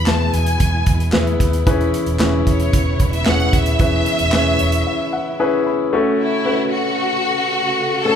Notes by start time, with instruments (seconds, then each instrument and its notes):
Already playing: string section B2 G#3 E4, grand piano E3 B3 E4 G#4 B4
0.06 fingered electric bass E2, grand piano B3 E4 G#4 B4, violin section A5, snare, clap
0.33 fingered electric bass E2, violin section G#5, closed hi-hat
0.46 closed hi-hat
0.60 fingered electric bass E2, kick, closed hi-hat
0.86 fingered electric bass E2, kick, closed hi-hat
1.00 closed hi-hat
1.12 fingered electric bass E2, grand piano B3 E4 G#4 B4, snare, clap
1.27 closed hi-hat
1.40 fingered electric bass D#2, kick, snare, closed hi-hat
1.53 closed hi-hat
1.66 string section C#3 B3, grand piano E3 C#4 E4 G#4 B4, kick, closed hi-hat
1.81 closed hi-hat
1.94 closed hi-hat
2.06 fingered electric bass E1, closed hi-hat
2.19 fingered electric bass E1, grand piano C#4 E4 G#4 B4, snare, clap
2.47 fingered electric bass E1, violin section C#5, kick, closed hi-hat
2.60 closed hi-hat
2.73 fingered electric bass E1, kick, closed hi-hat
3.00 fingered electric bass E1, kick, closed hi-hat
3.13 violin section E5, closed hi-hat
3.25 fingered electric bass E1, grand piano C#4 E4 G#4 B4, violin section F#5, snare, clap
3.40 closed hi-hat
3.53 fingered electric bass D#1, violin section E5, kick, closed hi-hat
3.66 closed hi-hat
3.79 fingered electric bass E1, grand piano E3 C#4 E4 G#4 B4, kick, closed hi-hat
4.06 closed hi-hat
4.19 fingered electric bass E1, closed hi-hat
4.32 fingered electric bass E1, grand piano C#4 E4 G#4 B4, snare, clap
4.59 fingered electric bass E1, grand piano C#5, closed hi-hat
4.72 closed hi-hat
4.87 grand piano E5
5.13 grand piano F#5
5.40 grand piano C#4 E4 G#4 B4 G#5
5.66 grand piano B5
5.92 string section C#3 A3 F#4, grand piano A3 C#4 F#4 A4
6.20 violin section E4
6.45 grand piano A3 C#4 F#4 B4
6.73 violin section F#4
8.05 grand piano A3 C#4 F#4 A4, violin section A4